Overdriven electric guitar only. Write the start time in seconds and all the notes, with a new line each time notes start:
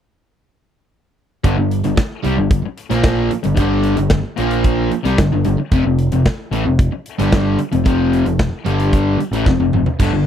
1.44 G2 D3
1.57 G2 D3
1.84 G2 D3
1.96 muted overdriven electric guitar stroke
2.23 C3 G3
2.37 G2 D3
2.63 muted overdriven electric guitar stroke
2.90 A#2 F3 A#3
3.32 muted overdriven electric guitar stroke
3.45 G2 D3
3.58 G2 D3 G3
3.99 G2 D3
4.39 A#2 F3 A#3
4.92 muted overdriven electric guitar stroke
5.05 C3 G3
5.19 G2 D3
5.33 G2 D3
5.45 G2 D3
5.58 muted overdriven electric guitar stroke
5.72 F2 C3
5.86 F2 C3
6.13 F2 C3
6.26 muted overdriven electric guitar stroke
6.53 A2 E3
6.65 F2 C3
6.92 muted overdriven electric guitar stroke
7.18 G2 D3 G3
7.58 muted overdriven electric guitar stroke
7.72 F2 C3
7.85 F2 C3 F3
8.25 F2 C3
8.65 G2 D3 G3
9.19 muted overdriven electric guitar stroke
9.33 A2 E3
9.47 F2 C3
9.60 F2 C3
9.74 F2 C3
9.87 muted overdriven electric guitar stroke
9.99 G2 D3
10.12 G2 D3